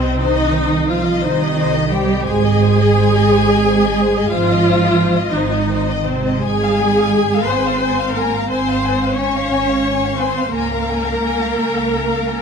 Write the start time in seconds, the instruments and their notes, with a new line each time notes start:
Already playing: cello section C3, viola section C4, violin section C5
0.00 violin section D#5
0.19 double bass section C2, cello section D#3, viola section D#4, violin section C5 D#5
0.36 violin section D#5
0.52 violin section C5
0.72 violin section D#5
0.88 cello section F3, viola section F4, violin section C5 F5
1.04 violin section D#5
1.23 double bass section C2, cello section D#3, viola section D#4, violin section C5 D#5
1.40 violin section D#5
1.57 violin section C5
1.74 violin section D#5
1.89 cello section G3, viola section G4, violin section C5 G5
2.08 violin section D#5
2.23 double bass section G#1, cello section G#3, viola section G#4, violin section C5 G#5
2.43 violin section D#5
2.61 violin section C5
2.79 violin section D#5
2.97 violin section C5
3.14 violin section D#5
3.28 double bass section G#1, violin section C5
3.48 violin section D#5
3.66 violin section C5
3.83 violin section D#5
4.01 violin section C5
4.16 violin section D#5
4.30 double bass section G#1, cello section F3, viola section F4, violin section C5 F5
4.51 violin section D#5
4.68 violin section C5
4.83 violin section D#5
4.99 violin section C5
5.16 violin section D#5
5.30 double bass section G#1, cello section D#3, viola section D#4, violin section D#5
5.35 violin section C5
5.51 violin section D#5
5.71 violin section C5
5.90 violin section D#5
6.04 cello section C3, viola section C4, violin section C5
6.09 violin section C5
6.27 violin section D#5
6.40 double bass section G#1, cello section G#3, viola section G#4, violin section G#5
6.45 violin section G#5
6.63 violin section F5
6.81 violin section G#5
6.99 violin section F5
7.15 violin section G#5
7.33 violin section F5
7.45 double bass section G#1, cello section C4, viola section C5, violin section C6
7.51 violin section G#5
7.66 violin section F5
7.83 violin section G#5
7.99 violin section F5
8.15 cello section A#3, viola section A#4, violin section G#5 A#5
8.35 violin section F5
8.48 double bass section G#1, cello section C4, viola section C5, violin section G#5 C6
8.68 violin section F5
8.83 violin section G#5
9.01 violin section F5
9.14 cello section C#4, viola section C#5
9.19 violin section G#5 C#6
9.35 violin section F5
9.51 double bass section G#1, violin section G#5
9.69 violin section F5
9.87 violin section G#5
10.04 violin section F5
10.17 cello section C4, viola section C5, violin section G#5 C6
10.38 violin section F5
10.51 double bass section C#2, cello section A#3, viola section A#4, violin section G#5 A#5
10.74 violin section F5
10.89 violin section G#5
11.06 violin section F5
11.25 violin section G#5
11.42 violin section F5
11.54 double bass section C#2
11.60 violin section G#5
11.77 violin section F5
11.94 violin section G#5
12.11 violin section F5
12.27 violin section G#5